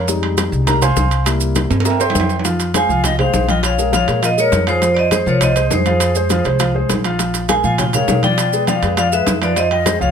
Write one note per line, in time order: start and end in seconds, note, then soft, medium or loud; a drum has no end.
0.00 0.47 F2 medium
0.07 0.65 G3 medium
0.07 0.65 G#3 soft
0.07 0.66 D#4 medium
0.07 high bongo medium
0.07 high conga soft
0.07 maracas medium
0.23 high conga soft
0.23 high timbale medium
0.38 high bongo medium
0.38 high conga loud
0.38 high timbale medium
0.38 maracas medium
0.52 0.94 C2 loud
0.52 high conga soft
0.52 maracas soft
0.67 0.80 G3 medium
0.67 0.80 G#3 soft
0.67 0.81 D#4 medium
0.67 0.82 A#4 medium
0.67 0.82 A#5 medium
0.67 high bongo medium
0.67 high conga soft
0.67 low conga medium
0.67 high timbale medium
0.67 maracas medium
0.82 1.24 C5 medium
0.82 1.23 F5 medium
0.82 1.23 G#5 medium
0.82 1.23 C6 loud
0.82 high conga soft
0.82 low conga medium
0.82 high timbale medium
0.82 maracas medium
0.96 1.65 C2 medium
0.96 high bongo medium
0.96 low bongo medium
0.96 high conga medium
0.96 maracas medium
1.11 high conga soft
1.11 high timbale medium
1.11 maracas soft
1.26 1.68 G3 medium
1.26 1.69 A#3 medium
1.26 1.69 E4 medium
1.26 high bongo medium
1.26 high conga soft
1.26 high timbale loud
1.26 maracas medium
1.40 high bongo soft
1.40 high conga soft
1.40 maracas medium
1.55 high bongo medium
1.55 high conga loud
1.55 high timbale medium
1.55 maracas medium
1.70 2.12 G2 loud
1.70 high bongo soft
1.70 high conga soft
1.70 high timbale medium
1.70 maracas soft
1.80 high timbale loud
1.85 2.00 A#4 medium
1.85 1.99 E5 medium
1.85 1.99 G5 medium
1.85 2.00 A#5 medium
1.85 high bongo medium
1.85 high conga soft
1.85 maracas medium
1.90 high timbale loud
2.00 2.35 C5 medium
2.00 2.35 E5 medium
2.00 2.35 G5 medium
2.00 2.35 C6 loud
2.00 high conga soft
2.00 high timbale loud
2.00 maracas medium
2.10 low timbale medium
2.15 2.84 F2 medium
2.15 high bongo medium
2.15 low bongo medium
2.15 high conga medium
2.15 maracas medium
2.20 low timbale loud
2.29 high bongo soft
2.29 low timbale medium
2.29 maracas soft
2.39 low timbale medium
2.45 2.69 F3 medium
2.45 2.69 F4 medium
2.45 2.69 F5 medium
2.45 high bongo medium
2.45 high conga soft
2.45 high timbale medium
2.45 maracas medium
2.59 high bongo soft
2.59 high conga soft
2.59 high timbale medium
2.59 maracas medium
2.74 2.87 G#3 medium
2.74 2.87 G#4 medium
2.74 2.87 C5 medium
2.74 3.02 F5 medium
2.74 3.03 G#5 loud
2.74 high bongo medium
2.74 high conga medium
2.74 high timbale medium
2.74 low timbale medium
2.74 maracas medium
2.89 3.31 C2 medium
2.89 3.13 F3 medium
2.89 3.14 F4 medium
2.89 3.14 F5 medium
2.89 maracas soft
3.04 3.18 D#5 medium
3.04 3.19 G5 loud
3.04 high bongo medium
3.04 high conga soft
3.04 low conga medium
3.04 high timbale medium
3.04 maracas medium
3.19 3.31 G#3 medium
3.19 3.31 G#4 medium
3.19 3.31 C5 medium
3.19 3.47 C5 medium
3.19 3.50 F5 medium
3.19 high bongo soft
3.19 high conga soft
3.19 low conga medium
3.19 high timbale medium
3.33 4.02 A#1 medium
3.33 3.46 G#3 medium
3.33 3.46 G#4 medium
3.33 3.46 C5 medium
3.33 high bongo medium
3.33 low bongo medium
3.33 high conga medium
3.33 low timbale medium
3.33 maracas medium
3.48 3.73 F3 medium
3.48 3.73 F4 medium
3.48 3.63 D#5 medium
3.48 3.73 F5 medium
3.48 3.65 G5 loud
3.48 high bongo soft
3.48 high conga medium
3.48 high timbale medium
3.48 maracas soft
3.63 3.91 C#5 medium
3.63 3.94 F5 medium
3.63 high bongo medium
3.63 high conga soft
3.63 high timbale medium
3.63 maracas medium
3.78 3.90 G#3 medium
3.78 3.90 G#4 medium
3.78 3.91 A#4 medium
3.78 high bongo soft
3.78 high conga soft
3.78 maracas medium
3.92 4.05 F3 medium
3.92 4.05 F4 medium
3.92 4.21 C#5 medium
3.92 4.05 F5 medium
3.92 4.25 F5 medium
3.92 high bongo medium
3.92 high conga medium
3.92 high timbale medium
3.92 low timbale medium
3.92 maracas medium
4.08 4.49 A#2 loud
4.08 4.20 G#3 medium
4.08 4.20 G#4 medium
4.08 4.20 A#4 medium
4.08 high timbale medium
4.08 maracas soft
4.22 4.35 F3 medium
4.22 4.35 F4 medium
4.22 4.30 A#4 medium
4.22 4.31 D#5 medium
4.22 4.35 F5 medium
4.22 high bongo medium
4.22 high conga soft
4.22 high timbale medium
4.22 maracas medium
4.37 4.62 G#3 medium
4.37 4.62 G#4 medium
4.37 4.62 A#4 medium
4.37 4.66 A#4 medium
4.37 4.69 C#5 medium
4.37 high conga soft
4.37 maracas medium
4.52 5.21 F2 medium
4.52 high bongo medium
4.52 low bongo medium
4.52 high conga medium
4.52 high timbale medium
4.52 low timbale medium
4.52 maracas medium
4.67 4.79 F3 medium
4.67 4.79 F4 medium
4.67 4.92 G#4 medium
4.67 4.95 C5 medium
4.67 4.80 F5 medium
4.67 high bongo soft
4.67 high conga soft
4.67 high timbale medium
4.67 maracas soft
4.82 5.06 F3 medium
4.82 5.06 F4 medium
4.82 5.07 F5 medium
4.82 high bongo medium
4.82 high conga soft
4.82 high timbale medium
4.82 maracas medium
4.93 4.96 A#4 medium
4.93 4.97 D5 medium
4.93 high bongo soft
4.93 high timbale medium
4.97 5.11 C5 medium
4.97 5.13 D#5 medium
4.97 high conga soft
5.11 5.24 G#3 medium
5.11 5.24 G#4 medium
5.11 5.19 G#4 medium
5.11 5.24 C5 medium
5.11 5.20 C5 medium
5.11 high bongo medium
5.11 high conga medium
5.11 high timbale medium
5.11 low timbale medium
5.11 maracas medium
5.26 5.68 C2 medium
5.26 5.51 F3 medium
5.26 5.51 F4 medium
5.26 5.40 A#4 medium
5.26 5.43 C#5 medium
5.26 5.51 F5 medium
5.26 maracas soft
5.41 5.69 C5 medium
5.41 5.73 D#5 medium
5.41 high bongo medium
5.41 high conga soft
5.41 low conga medium
5.41 high timbale medium
5.41 maracas medium
5.56 5.68 G#3 medium
5.56 5.69 G#4 medium
5.56 5.69 C5 medium
5.56 high bongo soft
5.56 high conga soft
5.56 high timbale medium
5.56 maracas medium
5.71 6.39 F2 medium
5.71 5.83 G#3 medium
5.71 6.86 G#4 medium
5.71 5.83 G#4 medium
5.71 5.84 C5 medium
5.71 6.87 C5 medium
5.71 high bongo medium
5.71 low bongo medium
5.71 high conga medium
5.71 low timbale medium
5.71 maracas medium
5.86 6.10 F3 medium
5.86 6.10 F4 medium
5.86 6.11 F5 medium
5.86 high bongo soft
5.86 high conga medium
5.86 high timbale medium
5.86 maracas soft
6.00 high bongo medium
6.00 high conga soft
6.00 high timbale loud
6.00 maracas medium
6.15 6.28 G#3 medium
6.15 6.28 G#4 medium
6.15 6.28 C5 medium
6.15 high bongo soft
6.15 high conga soft
6.15 maracas medium
6.30 6.43 F3 medium
6.30 6.43 F4 medium
6.30 6.43 F5 medium
6.30 high bongo medium
6.30 high conga medium
6.30 high timbale medium
6.30 low timbale medium
6.30 maracas medium
6.45 6.86 C2 medium
6.45 6.57 G#3 medium
6.45 6.57 G#4 medium
6.45 6.58 C5 medium
6.45 high timbale medium
6.45 maracas soft
6.59 6.72 F3 medium
6.59 6.72 F4 medium
6.59 6.72 F5 medium
6.59 high bongo medium
6.59 high conga soft
6.59 high timbale medium
6.59 maracas medium
6.75 6.99 G#3 medium
6.75 6.99 G#4 medium
6.75 6.99 C5 medium
6.75 high conga soft
6.89 7.58 A#1 medium
6.89 high bongo medium
6.89 low bongo medium
6.89 high conga medium
6.89 high timbale medium
6.89 low timbale medium
6.89 maracas medium
7.04 7.17 F3 medium
7.04 7.17 F4 medium
7.04 7.17 F5 medium
7.04 high bongo soft
7.04 high conga soft
7.04 high timbale medium
7.04 maracas soft
7.19 7.44 F3 medium
7.19 7.44 F4 medium
7.19 7.44 F5 medium
7.19 high bongo medium
7.19 high conga soft
7.19 high timbale medium
7.19 maracas medium
7.34 high bongo soft
7.34 high conga soft
7.34 high timbale medium
7.34 maracas medium
7.48 7.61 G#3 medium
7.48 7.61 G#4 medium
7.48 7.62 A#4 medium
7.48 7.54 F5 medium
7.48 7.56 G#5 loud
7.48 high bongo medium
7.48 high conga loud
7.48 high timbale medium
7.48 low timbale medium
7.48 maracas medium
7.63 8.05 A#2 medium
7.63 7.88 F3 medium
7.63 7.88 F4 medium
7.63 7.77 F5 medium
7.63 7.89 F5 medium
7.63 7.78 G#5 loud
7.63 maracas soft
7.78 7.85 C#5 medium
7.78 7.86 G5 medium
7.78 high bongo medium
7.78 high conga soft
7.78 low conga medium
7.78 high timbale medium
7.78 maracas medium
7.93 8.06 G#3 medium
7.93 8.06 G#4 medium
7.93 8.06 A#4 medium
7.93 8.21 C#5 medium
7.93 8.22 F5 medium
7.93 high bongo soft
7.93 high conga soft
7.93 low conga medium
7.93 high timbale medium
7.93 maracas medium
8.08 8.77 B2 medium
8.08 8.21 G#3 medium
8.08 8.21 G#4 medium
8.08 8.21 A#4 medium
8.08 high bongo medium
8.08 low bongo medium
8.08 high conga medium
8.08 low timbale medium
8.08 maracas medium
8.23 8.48 F3 medium
8.23 8.48 F4 medium
8.23 8.65 D5 medium
8.23 8.48 F5 medium
8.23 8.69 G5 loud
8.23 high bongo soft
8.23 high conga medium
8.23 high timbale medium
8.23 maracas soft
8.38 high bongo medium
8.38 high conga soft
8.38 high timbale medium
8.38 maracas medium
8.53 8.65 G#3 medium
8.53 8.65 G#4 medium
8.53 8.65 B4 medium
8.53 high bongo soft
8.53 high conga soft
8.53 maracas medium
8.67 8.80 F3 medium
8.67 8.80 F4 medium
8.67 8.95 D5 medium
8.67 8.80 F5 medium
8.67 8.96 F5 medium
8.67 high bongo medium
8.67 high conga medium
8.67 high timbale medium
8.67 low timbale medium
8.67 maracas medium
8.82 9.24 F2 medium
8.82 8.95 G#3 medium
8.82 8.95 G#4 medium
8.82 8.95 B4 medium
8.82 high timbale medium
8.82 maracas soft
8.97 9.09 F3 medium
8.97 9.10 F4 medium
8.97 9.11 D5 medium
8.97 9.10 F5 medium
8.97 9.12 F5 medium
8.97 high bongo medium
8.97 high conga soft
8.97 high timbale medium
8.97 maracas medium
9.12 9.36 G#3 medium
9.12 9.37 G#4 medium
9.12 9.40 B4 medium
9.12 9.37 B4 medium
9.12 9.43 E5 medium
9.12 high conga soft
9.12 maracas medium
9.27 9.95 F2 medium
9.27 high bongo medium
9.27 low bongo medium
9.27 high conga medium
9.27 high timbale medium
9.27 low timbale medium
9.27 maracas medium
9.42 9.54 F3 medium
9.42 9.54 F4 medium
9.42 9.56 B4 medium
9.42 9.58 D5 medium
9.42 9.54 F5 medium
9.42 high bongo soft
9.42 high conga soft
9.42 high timbale medium
9.42 maracas soft
9.56 9.81 F3 medium
9.56 9.81 F4 medium
9.56 9.70 C5 medium
9.56 9.72 D#5 medium
9.56 9.81 F5 medium
9.56 high bongo medium
9.56 high conga soft
9.56 high timbale medium
9.56 maracas medium
9.71 9.99 D#5 medium
9.71 9.99 G5 medium
9.71 high bongo soft
9.71 high conga soft
9.71 high timbale medium
9.86 9.98 G#3 medium
9.86 9.98 G#4 medium
9.86 9.98 C5 medium
9.86 high bongo medium
9.86 high conga medium
9.86 high timbale medium
9.86 low timbale medium
9.86 maracas medium
10.00 10.11 C2 medium
10.00 10.11 F3 medium
10.00 10.11 F4 medium
10.00 10.11 C#5 medium
10.00 10.11 F5 medium
10.00 maracas soft